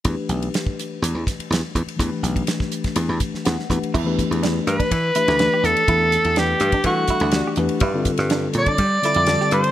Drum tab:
CC |----------------|----------------|x---------------|----------------|
RD |x-xxx-x-x-xxx-xx|x-xxx-xxx-x-x-xx|--xxx-xxx-xxx-xx|x-xxx-xxx-xxx-xx|
HH |p-p-p-p-p-p-p-p-|p-p-p-p-p-p-p-p-|--p---p---p---p-|--p---p---p---p-|
SD |----o-----o-o---|----oo-o---ooo--|----o------oo---|----o-------o---|
BD |o----o----o---o-|o--o-o-o--o---o-|o-o----oo-------|o------oo-o-----|

CC |----------------|
RD |x-xxx-xxx-xxx-xx|
HH |--p---p---p---p-|
SD |---oo-----o-oo--|
BD |o-o----oo-------|